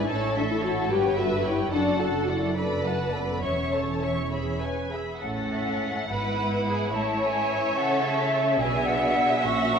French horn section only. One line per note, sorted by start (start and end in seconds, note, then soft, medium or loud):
0.11 0.37 C#4 medium
0.37 0.43 D4 medium
0.51 0.57 E4 medium
0.64 0.90 F#4 medium
0.91 1.18 G4 medium
1.19 1.31 F#4 medium
1.47 1.72 E4 medium
1.74 2.01 D4 medium
2.00 2.28 F#4 medium
2.28 2.56 E4 soft
2.56 2.85 D4 soft
2.86 2.99 A3 soft
3.14 3.43 B3 soft
3.44 4.89 C#4 soft
5.20 8.54 E3 soft
5.20 6.05 C#4 soft
6.09 6.89 B3 soft
6.93 8.54 C#4 soft
8.58 9.79 F#3 medium
8.58 9.39 D4 soft
9.43 9.79 C#4 soft